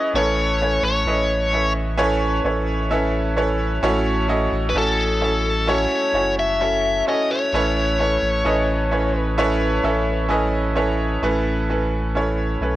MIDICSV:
0, 0, Header, 1, 4, 480
1, 0, Start_track
1, 0, Tempo, 923077
1, 72, Time_signature, 4, 2, 24, 8
1, 6636, End_track
2, 0, Start_track
2, 0, Title_t, "Lead electric guitar"
2, 0, Program_c, 0, 29
2, 0, Note_on_c, 0, 75, 104
2, 79, Note_off_c, 0, 75, 0
2, 81, Note_on_c, 0, 73, 99
2, 435, Note_off_c, 0, 73, 0
2, 441, Note_on_c, 0, 73, 77
2, 896, Note_off_c, 0, 73, 0
2, 2443, Note_on_c, 0, 71, 61
2, 2476, Note_off_c, 0, 71, 0
2, 2485, Note_on_c, 0, 69, 81
2, 2959, Note_off_c, 0, 69, 0
2, 2961, Note_on_c, 0, 73, 98
2, 3296, Note_off_c, 0, 73, 0
2, 3325, Note_on_c, 0, 76, 107
2, 3658, Note_off_c, 0, 76, 0
2, 3686, Note_on_c, 0, 75, 96
2, 3800, Note_on_c, 0, 73, 95
2, 3802, Note_off_c, 0, 75, 0
2, 4773, Note_off_c, 0, 73, 0
2, 4773, Note_on_c, 0, 71, 95
2, 5335, Note_off_c, 0, 71, 0
2, 6636, End_track
3, 0, Start_track
3, 0, Title_t, "Grand piano"
3, 0, Program_c, 1, 0
3, 0, Control_c, 1, 64, 127
3, 0, Note_on_c, 1, 61, 85
3, 0, Note_on_c, 1, 64, 84
3, 0, Note_on_c, 1, 68, 80
3, 0, Note_on_c, 1, 71, 77
3, 0, Note_on_c, 1, 73, 100
3, 0, Note_on_c, 1, 75, 83
3, 61, Note_off_c, 1, 61, 0
3, 62, Note_off_c, 1, 64, 0
3, 63, Note_off_c, 1, 68, 0
3, 64, Note_off_c, 1, 71, 0
3, 64, Note_off_c, 1, 73, 0
3, 77, Note_on_c, 1, 61, 88
3, 78, Control_c, 1, 64, 0
3, 79, Note_on_c, 1, 45, 64
3, 79, Note_on_c, 1, 69, 93
3, 80, Note_off_c, 1, 75, 0
3, 80, Note_on_c, 1, 64, 86
3, 82, Note_on_c, 1, 73, 105
3, 83, Note_on_c, 1, 71, 89
3, 183, Control_c, 1, 64, 127
3, 303, Note_off_c, 1, 61, 0
3, 304, Note_off_c, 1, 64, 0
3, 304, Note_off_c, 1, 69, 0
3, 305, Note_off_c, 1, 71, 0
3, 305, Note_off_c, 1, 73, 0
3, 320, Note_on_c, 1, 61, 66
3, 322, Note_on_c, 1, 69, 65
3, 323, Note_on_c, 1, 64, 59
3, 324, Note_on_c, 1, 71, 63
3, 327, Note_on_c, 1, 73, 77
3, 544, Note_off_c, 1, 61, 0
3, 545, Note_off_c, 1, 64, 0
3, 545, Note_off_c, 1, 69, 0
3, 546, Note_off_c, 1, 71, 0
3, 547, Note_off_c, 1, 73, 0
3, 557, Note_on_c, 1, 64, 66
3, 558, Note_on_c, 1, 61, 74
3, 558, Note_on_c, 1, 69, 67
3, 561, Note_on_c, 1, 71, 70
3, 563, Note_on_c, 1, 75, 87
3, 775, Note_off_c, 1, 45, 0
3, 782, Note_off_c, 1, 64, 0
3, 783, Note_off_c, 1, 61, 0
3, 783, Note_off_c, 1, 69, 0
3, 784, Note_off_c, 1, 71, 0
3, 786, Note_off_c, 1, 75, 0
3, 795, Note_on_c, 1, 61, 61
3, 799, Note_on_c, 1, 69, 58
3, 800, Note_on_c, 1, 64, 59
3, 801, Note_on_c, 1, 71, 62
3, 803, Note_on_c, 1, 76, 73
3, 1020, Note_off_c, 1, 61, 0
3, 1023, Note_off_c, 1, 64, 0
3, 1024, Note_off_c, 1, 69, 0
3, 1024, Note_off_c, 1, 71, 0
3, 1025, Note_off_c, 1, 76, 0
3, 1027, Note_on_c, 1, 61, 116
3, 1031, Note_on_c, 1, 64, 106
3, 1032, Note_on_c, 1, 71, 105
3, 1033, Note_on_c, 1, 69, 102
3, 1034, Note_on_c, 1, 73, 127
3, 1258, Note_off_c, 1, 61, 0
3, 1259, Note_off_c, 1, 64, 0
3, 1260, Note_off_c, 1, 71, 0
3, 1261, Note_off_c, 1, 69, 0
3, 1261, Note_off_c, 1, 73, 0
3, 1272, Note_on_c, 1, 61, 88
3, 1272, Note_on_c, 1, 64, 81
3, 1273, Note_on_c, 1, 69, 74
3, 1274, Note_on_c, 1, 71, 74
3, 1279, Note_on_c, 1, 73, 100
3, 1500, Note_off_c, 1, 61, 0
3, 1500, Note_off_c, 1, 64, 0
3, 1501, Note_off_c, 1, 69, 0
3, 1501, Note_off_c, 1, 71, 0
3, 1503, Note_off_c, 1, 73, 0
3, 1511, Note_on_c, 1, 61, 98
3, 1512, Note_on_c, 1, 64, 90
3, 1513, Note_on_c, 1, 69, 79
3, 1516, Note_on_c, 1, 71, 80
3, 1517, Note_on_c, 1, 76, 104
3, 1740, Note_off_c, 1, 61, 0
3, 1740, Note_off_c, 1, 64, 0
3, 1741, Note_off_c, 1, 69, 0
3, 1742, Note_off_c, 1, 71, 0
3, 1743, Note_off_c, 1, 76, 0
3, 1750, Note_on_c, 1, 61, 87
3, 1751, Note_on_c, 1, 64, 80
3, 1753, Note_on_c, 1, 69, 86
3, 1755, Note_on_c, 1, 73, 98
3, 1756, Note_on_c, 1, 71, 81
3, 1979, Note_off_c, 1, 61, 0
3, 1979, Note_off_c, 1, 64, 0
3, 1980, Note_off_c, 1, 69, 0
3, 1982, Note_off_c, 1, 71, 0
3, 1982, Note_off_c, 1, 73, 0
3, 1991, Note_on_c, 1, 61, 114
3, 1993, Note_on_c, 1, 45, 73
3, 1993, Note_on_c, 1, 66, 101
3, 1994, Note_on_c, 1, 64, 103
3, 1996, Note_on_c, 1, 69, 105
3, 1996, Note_on_c, 1, 73, 125
3, 1999, Control_c, 1, 64, 0
3, 2086, Control_c, 1, 64, 127
3, 2219, Note_off_c, 1, 61, 0
3, 2221, Note_off_c, 1, 64, 0
3, 2221, Note_off_c, 1, 66, 0
3, 2222, Note_off_c, 1, 69, 0
3, 2222, Note_off_c, 1, 73, 0
3, 2227, Note_on_c, 1, 61, 85
3, 2231, Note_on_c, 1, 64, 79
3, 2232, Note_on_c, 1, 66, 75
3, 2233, Note_on_c, 1, 69, 81
3, 2233, Note_on_c, 1, 75, 105
3, 2458, Note_off_c, 1, 61, 0
3, 2459, Note_off_c, 1, 64, 0
3, 2460, Note_off_c, 1, 66, 0
3, 2460, Note_off_c, 1, 75, 0
3, 2461, Note_off_c, 1, 69, 0
3, 2470, Note_on_c, 1, 61, 76
3, 2472, Note_on_c, 1, 64, 66
3, 2474, Note_on_c, 1, 66, 66
3, 2474, Note_on_c, 1, 69, 72
3, 2475, Note_on_c, 1, 73, 76
3, 2692, Note_off_c, 1, 45, 0
3, 2699, Note_off_c, 1, 61, 0
3, 2700, Note_off_c, 1, 64, 0
3, 2701, Note_off_c, 1, 66, 0
3, 2701, Note_off_c, 1, 69, 0
3, 2702, Note_off_c, 1, 73, 0
3, 2710, Note_on_c, 1, 61, 68
3, 2712, Note_on_c, 1, 64, 63
3, 2712, Note_on_c, 1, 66, 55
3, 2714, Note_on_c, 1, 69, 54
3, 2715, Note_on_c, 1, 73, 75
3, 2939, Note_off_c, 1, 61, 0
3, 2940, Note_off_c, 1, 64, 0
3, 2940, Note_off_c, 1, 66, 0
3, 2941, Note_off_c, 1, 69, 0
3, 2942, Note_off_c, 1, 73, 0
3, 2951, Note_on_c, 1, 61, 103
3, 2953, Note_on_c, 1, 64, 87
3, 2955, Note_on_c, 1, 66, 92
3, 2955, Note_on_c, 1, 69, 88
3, 2957, Note_on_c, 1, 73, 105
3, 3180, Note_off_c, 1, 61, 0
3, 3180, Note_off_c, 1, 64, 0
3, 3181, Note_off_c, 1, 66, 0
3, 3181, Note_off_c, 1, 69, 0
3, 3183, Note_off_c, 1, 73, 0
3, 3193, Note_on_c, 1, 61, 73
3, 3195, Note_on_c, 1, 64, 69
3, 3196, Note_on_c, 1, 66, 68
3, 3198, Note_on_c, 1, 69, 67
3, 3198, Note_on_c, 1, 73, 85
3, 3420, Note_off_c, 1, 61, 0
3, 3422, Note_off_c, 1, 64, 0
3, 3422, Note_off_c, 1, 66, 0
3, 3423, Note_off_c, 1, 69, 0
3, 3423, Note_off_c, 1, 73, 0
3, 3434, Note_on_c, 1, 61, 76
3, 3435, Note_on_c, 1, 64, 74
3, 3437, Note_on_c, 1, 66, 69
3, 3438, Note_on_c, 1, 69, 70
3, 3438, Note_on_c, 1, 73, 81
3, 3661, Note_off_c, 1, 61, 0
3, 3661, Note_off_c, 1, 64, 0
3, 3663, Note_off_c, 1, 66, 0
3, 3663, Note_off_c, 1, 69, 0
3, 3663, Note_off_c, 1, 73, 0
3, 3675, Note_on_c, 1, 61, 81
3, 3676, Note_on_c, 1, 64, 66
3, 3677, Note_on_c, 1, 66, 70
3, 3680, Note_on_c, 1, 69, 69
3, 3681, Note_on_c, 1, 73, 83
3, 3902, Note_off_c, 1, 61, 0
3, 3902, Note_off_c, 1, 64, 0
3, 3902, Note_off_c, 1, 66, 0
3, 3904, Note_off_c, 1, 69, 0
3, 3905, Note_off_c, 1, 73, 0
3, 3919, Control_c, 1, 64, 0
3, 3920, Note_on_c, 1, 61, 101
3, 3920, Note_on_c, 1, 64, 92
3, 3921, Note_on_c, 1, 69, 84
3, 3922, Note_on_c, 1, 45, 66
3, 3923, Note_on_c, 1, 71, 84
3, 3927, Note_on_c, 1, 73, 112
3, 4025, Control_c, 1, 64, 127
3, 4144, Note_off_c, 1, 61, 0
3, 4144, Note_off_c, 1, 64, 0
3, 4145, Note_off_c, 1, 69, 0
3, 4145, Note_off_c, 1, 71, 0
3, 4148, Note_off_c, 1, 73, 0
3, 4157, Note_on_c, 1, 61, 76
3, 4159, Note_on_c, 1, 64, 73
3, 4160, Note_on_c, 1, 71, 64
3, 4161, Note_on_c, 1, 69, 62
3, 4163, Note_on_c, 1, 73, 77
3, 4382, Note_off_c, 1, 61, 0
3, 4383, Note_off_c, 1, 64, 0
3, 4384, Note_off_c, 1, 71, 0
3, 4385, Note_off_c, 1, 69, 0
3, 4385, Note_off_c, 1, 73, 0
3, 4393, Note_on_c, 1, 61, 92
3, 4393, Note_on_c, 1, 64, 74
3, 4396, Note_on_c, 1, 71, 84
3, 4397, Note_on_c, 1, 69, 82
3, 4399, Note_on_c, 1, 75, 101
3, 4616, Note_off_c, 1, 45, 0
3, 4621, Note_off_c, 1, 61, 0
3, 4621, Note_off_c, 1, 64, 0
3, 4622, Note_off_c, 1, 69, 0
3, 4622, Note_off_c, 1, 71, 0
3, 4623, Note_off_c, 1, 75, 0
3, 4634, Note_on_c, 1, 61, 80
3, 4635, Note_on_c, 1, 64, 69
3, 4637, Note_on_c, 1, 71, 76
3, 4639, Note_on_c, 1, 69, 73
3, 4641, Note_on_c, 1, 73, 79
3, 4861, Note_off_c, 1, 61, 0
3, 4862, Note_off_c, 1, 64, 0
3, 4863, Note_off_c, 1, 71, 0
3, 4864, Note_off_c, 1, 69, 0
3, 4864, Note_off_c, 1, 73, 0
3, 4876, Note_on_c, 1, 61, 112
3, 4877, Note_on_c, 1, 64, 112
3, 4879, Note_on_c, 1, 69, 102
3, 4881, Note_on_c, 1, 71, 116
3, 4882, Note_on_c, 1, 73, 127
3, 5102, Note_off_c, 1, 61, 0
3, 5103, Note_off_c, 1, 64, 0
3, 5104, Note_off_c, 1, 69, 0
3, 5104, Note_off_c, 1, 71, 0
3, 5105, Note_off_c, 1, 73, 0
3, 5114, Note_on_c, 1, 61, 87
3, 5117, Note_on_c, 1, 64, 77
3, 5119, Note_on_c, 1, 69, 82
3, 5119, Note_on_c, 1, 76, 96
3, 5121, Note_on_c, 1, 71, 78
3, 5341, Note_off_c, 1, 61, 0
3, 5343, Note_off_c, 1, 64, 0
3, 5344, Note_off_c, 1, 69, 0
3, 5345, Note_off_c, 1, 71, 0
3, 5346, Note_off_c, 1, 76, 0
3, 5350, Note_on_c, 1, 61, 94
3, 5352, Note_on_c, 1, 64, 83
3, 5353, Note_on_c, 1, 69, 75
3, 5353, Note_on_c, 1, 80, 74
3, 5357, Note_on_c, 1, 71, 81
3, 5358, Note_on_c, 1, 75, 102
3, 5579, Note_off_c, 1, 61, 0
3, 5580, Note_off_c, 1, 64, 0
3, 5580, Note_off_c, 1, 69, 0
3, 5582, Note_off_c, 1, 71, 0
3, 5583, Note_off_c, 1, 75, 0
3, 5593, Note_on_c, 1, 61, 86
3, 5594, Note_on_c, 1, 64, 83
3, 5595, Note_on_c, 1, 69, 83
3, 5598, Note_on_c, 1, 73, 98
3, 5599, Note_on_c, 1, 71, 81
3, 5812, Note_off_c, 1, 80, 0
3, 5820, Note_off_c, 1, 61, 0
3, 5821, Note_off_c, 1, 64, 0
3, 5821, Note_off_c, 1, 69, 0
3, 5823, Note_off_c, 1, 71, 0
3, 5823, Note_off_c, 1, 73, 0
3, 5838, Note_on_c, 1, 61, 95
3, 5839, Control_c, 1, 64, 0
3, 5839, Note_on_c, 1, 64, 96
3, 5840, Note_on_c, 1, 45, 70
3, 5841, Note_on_c, 1, 69, 91
3, 5843, Note_on_c, 1, 71, 106
3, 5938, Control_c, 1, 64, 127
3, 6063, Note_off_c, 1, 61, 0
3, 6064, Note_off_c, 1, 64, 0
3, 6064, Note_off_c, 1, 69, 0
3, 6066, Note_off_c, 1, 71, 0
3, 6082, Note_on_c, 1, 61, 77
3, 6082, Note_on_c, 1, 64, 67
3, 6084, Note_on_c, 1, 69, 71
3, 6088, Note_on_c, 1, 71, 79
3, 6305, Note_off_c, 1, 61, 0
3, 6305, Note_off_c, 1, 64, 0
3, 6306, Note_off_c, 1, 69, 0
3, 6308, Note_off_c, 1, 71, 0
3, 6319, Note_on_c, 1, 61, 77
3, 6322, Note_on_c, 1, 64, 74
3, 6324, Note_on_c, 1, 69, 69
3, 6327, Note_on_c, 1, 73, 89
3, 6535, Note_off_c, 1, 45, 0
3, 6543, Note_off_c, 1, 61, 0
3, 6545, Note_off_c, 1, 64, 0
3, 6546, Note_off_c, 1, 69, 0
3, 6547, Note_off_c, 1, 73, 0
3, 6561, Note_on_c, 1, 61, 68
3, 6562, Note_on_c, 1, 64, 60
3, 6564, Note_on_c, 1, 69, 60
3, 6567, Note_on_c, 1, 71, 79
3, 6636, Note_off_c, 1, 61, 0
3, 6636, Note_off_c, 1, 64, 0
3, 6636, Note_off_c, 1, 69, 0
3, 6636, Note_off_c, 1, 71, 0
3, 6636, End_track
4, 0, Start_track
4, 0, Title_t, "Sub bass"
4, 0, Program_c, 2, 38
4, 70, Note_on_c, 2, 33, 106
4, 410, Note_off_c, 2, 33, 0
4, 427, Note_on_c, 2, 33, 87
4, 541, Note_off_c, 2, 33, 0
4, 547, Note_on_c, 2, 33, 101
4, 1249, Note_off_c, 2, 33, 0
4, 1268, Note_on_c, 2, 33, 92
4, 1969, Note_off_c, 2, 33, 0
4, 1987, Note_on_c, 2, 33, 111
4, 2329, Note_off_c, 2, 33, 0
4, 2348, Note_on_c, 2, 33, 101
4, 2462, Note_off_c, 2, 33, 0
4, 2465, Note_on_c, 2, 33, 102
4, 3048, Note_off_c, 2, 33, 0
4, 3187, Note_on_c, 2, 30, 83
4, 3649, Note_off_c, 2, 30, 0
4, 3913, Note_on_c, 2, 33, 108
4, 4252, Note_off_c, 2, 33, 0
4, 4273, Note_on_c, 2, 33, 92
4, 4384, Note_off_c, 2, 33, 0
4, 4394, Note_on_c, 2, 33, 108
4, 5092, Note_off_c, 2, 33, 0
4, 5112, Note_on_c, 2, 33, 95
4, 5811, Note_off_c, 2, 33, 0
4, 5834, Note_on_c, 2, 33, 103
4, 6532, Note_off_c, 2, 33, 0
4, 6553, Note_on_c, 2, 35, 82
4, 6636, Note_off_c, 2, 35, 0
4, 6636, End_track
0, 0, End_of_file